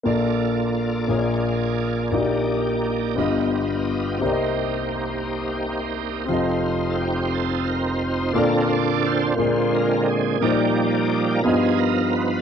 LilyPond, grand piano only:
\new Staff \with { instrumentName = "Grand piano" } { \time 6/8 \key bes \major \tempo 4. = 58 <bes,, bes, bes f' a' d''>4. <bes,, bes, bes f' aes' des'' d''>4. | <bes,, bes, bes ees' ges' g' d''>4. <g,, g, b f' g' dis''>4. | <c, c c' g' bes' d'' ees''>2. | <f,, f, c' f' a' ees''>2. |
<bes, bes f' a' d''>4. <bes, bes f' aes' d''>4. | <bes, bes ees' g' c'' d''>4. <g, b f' g' dis''>4. | }